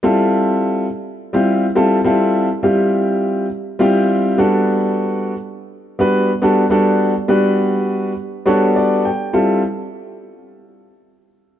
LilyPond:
\new Staff \with { instrumentName = "Grand piano" } { \time 4/4 \key f \major \tempo 4 = 103 << { r1 | r1 | r1 | r2 r8 des''8 d''8 g''8 |
r1 | } \\ { <g c' e' f' a'>4. r8. <g c' e' f' g'>8 r16 <g c' e' f' a'>16 r16 <g c' e' f' a'>8~ | <g c' e' f' a'>16 r16 <g c' e' f' g'>4. r8 <g c' e' f' g'>4 <g b d' fis' a'>8~ | <g b d' fis' a'>4 r4 r16 <g b d' fis' b'>8 r16 <g b d' fis' a'>16 r16 <g b d' fis' a'>8~ | <g b d' fis' a'>16 r16 <g b d' fis' b'>4. r8 <g b d' fis' a'>4 r8 |
<g c' e' f' a'>8 r2. r8 | } >> }